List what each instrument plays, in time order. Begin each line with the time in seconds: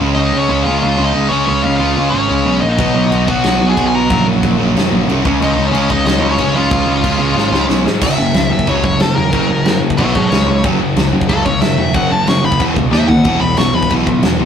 0.00 picked electric bass C#2, distorted electric guitar C#3 G#3 C#4
0.15 picked electric bass C#2, distorted electric guitar C#3 G#3 C#4, lead electric guitar D#4 D#5
0.32 picked electric bass C#2, distorted electric guitar C#3 G#3 C#4
0.37 lead electric guitar C#4 C#5
0.48 picked electric bass C#2, distorted electric guitar C#3 G#3 C#4
0.63 picked electric bass C#2, distorted electric guitar C#3 G#3 C#4, lead electric guitar F4 F5
0.79 picked electric bass C#2, distorted electric guitar C#3 G#3 C#4, lead electric guitar F4 F5
0.97 picked electric bass C#2, distorted electric guitar C#3 G#3 C#4
1.04 lead electric guitar D#4 D#5
1.13 picked electric bass C#2, distorted electric guitar C#3 G#3 C#4
1.28 distorted electric guitar C#3 G#3 C#4, lead electric guitar C#4 C#5
1.45 picked electric bass C#2, distorted electric guitar C#3 G#3 C#4, lead electric guitar C#4 C#5
1.62 picked electric bass C#2, distorted electric guitar C#3 G#3 C#4, lead electric guitar F4 F5
1.77 picked electric bass C#2, distorted electric guitar C#3 G#3 C#4, lead electric guitar F4 F5
1.97 picked electric bass C#2, distorted electric guitar C#3 G#3 C#4
2.10 picked electric bass G#1, distorted electric guitar G#3 C#4, lead electric guitar C#4 C#5
2.14 distorted electric guitar C#3
2.29 picked electric bass C#2, distorted electric guitar C#3 G#3 C#4
2.44 picked electric bass B1, distorted electric guitar C#3 G#3 C#4
2.60 picked electric bass A#1, distorted electric guitar C#3 G#3 C#4, lead electric guitar D#4 D#5
2.77 picked electric bass B1, distorted electric guitar B2 F#3 B3, kick, crash
2.94 picked electric bass B1, distorted electric guitar B2 F#3 B3
3.10 picked electric bass B1, distorted electric guitar B2 F#3 B3, crash
3.27 picked electric bass B1, distorted electric guitar B2 F#3 B3, lead electric guitar F#4 F#5, kick
3.44 picked electric bass B1, distorted electric guitar B2 F#3 B3, snare, crash
3.59 picked electric bass B1, distorted electric guitar B2 F#3 B3
3.69 lead electric guitar G#4 G#5
3.76 picked electric bass B1, distorted electric guitar B2 F#3 B3, kick, crash
3.88 lead electric guitar G#5
3.92 distorted electric guitar B2 F#3 B3, lead electric guitar A#5
3.96 lead electric guitar A#4
4.09 picked electric bass A#1, distorted electric guitar F#2 C#3 F#3, kick, crash
4.24 picked electric bass A#1, distorted electric guitar F#2 C#3 F#3
4.42 picked electric bass A#1, distorted electric guitar F#2 C#3 F#3, kick, crash
4.59 picked electric bass A#1, distorted electric guitar F#2 C#3 F#3
4.75 picked electric bass F1, distorted electric guitar F#2 C#3 F#3, snare, crash
4.91 picked electric bass A#1, distorted electric guitar F#2 C#3 F#3
5.07 picked electric bass C2, distorted electric guitar F#2 C#3 F#3, crash
5.24 picked electric bass C#2, distorted electric guitar C#3 G#3 C#4, kick
5.40 picked electric bass C#2, distorted electric guitar C#3 G#3 C#4, lead electric guitar D#5, crash
5.44 lead electric guitar D#4
5.56 picked electric bass C#2, distorted electric guitar C#3 G#3 C#4
5.67 lead electric guitar C#4 C#5
5.71 picked electric bass C#2, distorted electric guitar C#3 G#3 C#4, crash
5.88 picked electric bass C#2, distorted electric guitar C#3 G#3 C#4, lead electric guitar D#4 D#5, kick
6.04 picked electric bass C#2, distorted electric guitar C#3 G#3 C#4, lead electric guitar D#4 D#5, snare, crash
6.20 picked electric bass C#2, distorted electric guitar C#3 G#3 C#4
6.31 lead electric guitar C#4 C#5
6.37 picked electric bass C#2, distorted electric guitar C#3 G#3 C#4, kick, crash
6.54 distorted electric guitar C#3 G#3 C#4, lead electric guitar F4 F5
6.71 picked electric bass C#2, distorted electric guitar C#3 G#3 C#4, kick, crash
6.86 picked electric bass C#2, distorted electric guitar C#3 G#3 C#4
7.03 picked electric bass C#2, distorted electric guitar C#3 G#3 C#4, kick, crash
7.19 picked electric bass C#2, distorted electric guitar C#3 G#3 C#4
7.35 picked electric bass G#1, distorted electric guitar C#3 G#3 C#4, snare
7.52 picked electric bass C#2, distorted electric guitar C#3 G#3 C#4, snare
7.68 picked electric bass B1, distorted electric guitar C#3 G#3 C#4, snare
7.84 picked electric bass G#2, distorted electric guitar C#3 G#3 C#4, snare
8.00 picked electric bass F#1, distorted electric guitar F#2 C#3 F#3, lead electric guitar E5, kick, crash
8.17 picked electric bass F#1, distorted electric guitar F#2 C#3
8.33 picked electric bass C#2, distorted electric guitar F#2 C#3, snare, crash
8.50 picked electric bass F#1, distorted electric guitar F#2 C#3, lead electric guitar E5
8.59 kick
8.66 picked electric bass C#2, distorted electric guitar F#2 C#3 F#3, lead electric guitar C#5, kick, crash
8.83 picked electric bass C#2, distorted electric guitar F#2 C#3, lead electric guitar C#5, kick
8.99 picked electric bass F#1, distorted electric guitar F#2 C#3, lead electric guitar A4, snare, crash
9.16 picked electric bass E1, distorted electric guitar F#2 C#3, lead electric guitar A#4
9.32 picked electric bass F#1, distorted electric guitar F#2 C#3 F#3, kick, crash
9.49 picked electric bass F#1, distorted electric guitar F#2 C#3
9.65 picked electric bass F#1, distorted electric guitar F#2 C#3, snare, crash
9.81 picked electric bass F#1, distorted electric guitar F#2 C#3
9.90 kick
9.97 picked electric bass B1, distorted electric guitar B2 F#3 B3, lead electric guitar C#5 E5, kick, crash
10.15 picked electric bass G#2, distorted electric guitar B2 F#3, lead electric guitar A4 C#5, kick
10.30 picked electric bass C#2, distorted electric guitar C#3 G#3 C#4, lead electric guitar C#5, snare, crash
10.46 picked electric bass C#2, distorted electric guitar C#3 G#3
10.62 picked electric bass F#1, distorted electric guitar F#2 C#3 F#3, kick, crash
10.80 picked electric bass F#1, distorted electric guitar F#2 C#3
10.97 picked electric bass C#2, distorted electric guitar F#2 C#3, snare, crash
11.13 picked electric bass F#1, distorted electric guitar F#2 C#3
11.21 kick
11.29 picked electric bass C#2, distorted electric guitar F#2 C#3 F#3, lead electric guitar A4, kick, crash
11.45 picked electric bass C#2, distorted electric guitar F#2 C#3, lead electric guitar C#5, kick
11.61 picked electric bass F#1, distorted electric guitar F#2 C#3, lead electric guitar E5, snare, crash
11.77 picked electric bass E1, distorted electric guitar F#2 C#3
11.93 picked electric bass F#1, distorted electric guitar F#2 C#3 F#3, lead electric guitar F#5, kick, crash
12.11 picked electric bass F#1, distorted electric guitar F#2 C#3, lead electric guitar A5
12.26 picked electric bass F#1, distorted electric guitar F#2 C#3, lead electric guitar C#6, snare, crash
12.43 picked electric bass F#1, distorted electric guitar F#2 C#3, lead electric guitar B5
12.52 kick
12.58 picked electric bass E1, distorted electric guitar E2 B2 E3, kick, crash
12.76 picked electric bass C#2, distorted electric guitar E2 B2, kick
12.91 picked electric bass D#2, distorted electric guitar D#3 A#3 D#4, lead electric guitar E5, snare
13.07 picked electric bass D#2, distorted electric guitar D#3 A#3, lead electric guitar F#5, floor tom
13.24 picked electric bass E1, distorted electric guitar E2 B2 E3, kick, crash
13.40 picked electric bass E1, distorted electric guitar E2 B2, lead electric guitar B5
13.57 picked electric bass B1, distorted electric guitar E2 B2, lead electric guitar C#6, snare, crash
13.74 picked electric bass E1, distorted electric guitar E2 B2, lead electric guitar B5
13.83 kick
13.90 picked electric bass B1, distorted electric guitar E2 B2 E3, kick, crash
14.06 picked electric bass B1, distorted electric guitar E2 B2, kick
14.23 picked electric bass E1, distorted electric guitar E2 B2, snare, crash
14.39 picked electric bass C#2, distorted electric guitar E2 B2